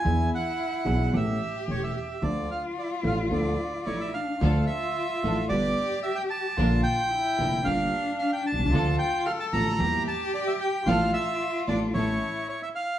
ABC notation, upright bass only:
X:1
M:4/4
L:1/16
Q:1/4=111
K:Dm
V:1 name="Upright bass" clef=bass
E,,3/2 z4 z/2 =B,,,3/2 z/2 A,,,3/2 z2 z/2 E,,,3/2 z2 z/2 | D,,3/2 z4 z/2 A,,,3/2 z/2 D,,3/2 z2 z/2 A,,,3/2 z2 z/2 | D,,3/2 z4 z/2 A,,,3/2 z/2 G,,,3/2 z6 z/2 | B,,,3/2 z4 z/2 F,,,3/2 z/2 G,,,3/2 z4 z =B,,,/2 C,,/2 ^C,,/2 |
D,,3/2 z4 z/2 A,,,3/2 z/2 E,,3/2 z6 z/2 | A,,,3/2 z4 z/2 A,,,3/2 z/2 A,,,3/2 z6 z/2 |]